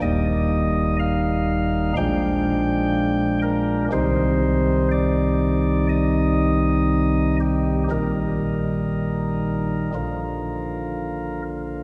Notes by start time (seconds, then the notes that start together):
0.02 D#1 D#2 G3 A#3 D#4 D#5
1.00 F5
1.97 A#1 A#2 F3 G#3 D4 G5
3.42 A#4
3.92 C2 C3 D#3 G3 D#4 C5
4.91 D5
5.89 D#5
7.40 G4
7.90 A#1 A#2 D#3 G3 D#4 A#4
9.94 A#1 A#2 D3 F3 F4